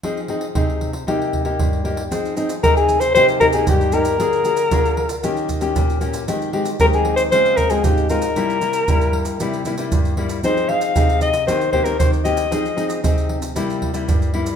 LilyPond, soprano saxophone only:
\new Staff \with { instrumentName = "Soprano saxophone" } { \time 4/4 \key f \minor \tempo 4 = 115 r1 | r4 bes'16 aes'8 c''16 c''8 bes'16 aes'16 g'8 bes'8~ | bes'2~ bes'8 r4. | r4 bes'16 aes'8 c''16 c''8 bes'16 aes'16 g'8 bes'8~ |
bes'2~ bes'8 r4. | c''8 f''4 ees''8 c''8 c''16 bes'16 c''8 ees''8~ | ees''4 r2. | }